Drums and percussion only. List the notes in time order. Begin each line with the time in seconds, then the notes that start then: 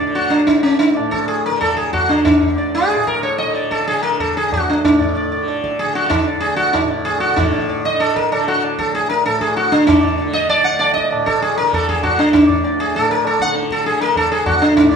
0.16 tabla te
0.32 tabla na
0.48 tabla ke
0.57 tabla te
0.65 tabla na
0.81 tabla te
0.97 tabla na
1.13 tabla ke
1.29 tabla te
1.46 tabla te
1.61 tabla na, tabla ge
1.78 tabla ge
1.94 tabla na, tabla ge
2.10 tabla ge
2.26 tabla na, tabla ge
2.43 tabla ge
2.59 tabla te
2.75 tabla te
2.91 tabla na
3.07 tabla ke
3.15 tabla te
3.23 tabla na
3.40 tabla te
3.56 tabla te
3.64 tabla te
3.72 tabla ke
3.80 tabla te
3.88 tabla te
4.04 tabla te
4.20 tabla na, tabla ge
4.36 tabla te
4.53 tabla na, tabla ge
4.68 tabla ge
4.85 tabla na, tabla ge
5.00 tabla ge
5.16 tabla te
5.32 tabla te
5.48 tabla na
5.64 tabla ke
5.72 tabla te
5.80 tabla te
5.96 tabla te
6.11 tabla na, tabla ge
6.43 tabla te
6.59 tabla te
6.75 tabla na, tabla ge
7.06 tabla te
7.22 tabla te
7.38 tabla na, tabla ge
7.53 tabla ge
7.69 tabla te
7.85 tabla te
8.01 tabla na
8.16 tabla ke
8.24 tabla te
8.32 tabla na
8.48 tabla te
8.63 tabla na
8.79 tabla ke
8.94 tabla te
9.10 tabla te
9.26 tabla te
9.33 tabla te
9.41 tabla ke
9.49 tabla te
9.57 tabla te
9.65 tabla te
9.72 tabla ke
9.81 tabla te
9.89 tabla na, tabla ge
10.04 tabla ge
10.19 tabla te
10.50 tabla na
10.66 tabla te
10.81 tabla na
10.97 tabla ke
11.05 tabla te
11.12 tabla na
11.28 tabla ke
11.43 tabla te
11.58 tabla te
11.73 tabla na, tabla ge
11.89 tabla ge
12.04 tabla na, tabla ge
12.19 tabla te
12.34 tabla na, tabla ge
12.49 tabla ge
12.64 tabla te
12.79 tabla te
12.95 tabla na
13.10 tabla te
13.25 tabla na
13.40 tabla ke
13.48 tabla te
13.55 tabla te
13.63 tabla te
13.70 tabla ke
13.78 tabla te
13.85 tabla te
14.01 tabla te
14.16 tabla na, tabla ge
14.31 tabla te
14.46 tabla na, tabla ge
14.62 tabla te
14.77 tabla na, tabla ge
14.91 tabla ge